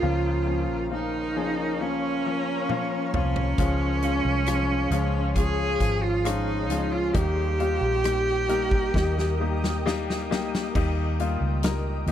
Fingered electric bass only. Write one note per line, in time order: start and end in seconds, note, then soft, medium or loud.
0.03 0.69 C#2 medium
0.69 1.81 A#1 medium
1.81 3.10 C#2 medium
3.14 3.55 C2 medium
3.58 4.21 C#2 medium
4.25 4.88 C2 medium
4.91 5.76 C#2 medium
5.80 6.69 G#1 medium
6.69 7.11 C#2 medium
7.15 7.78 D#2 medium
7.81 8.90 A#1 medium
8.94 10.30 D#2 medium
10.30 10.72 C#2 medium
10.75 11.37 D#2 medium
11.41 12.03 C#2 medium
12.07 12.12 D#2 medium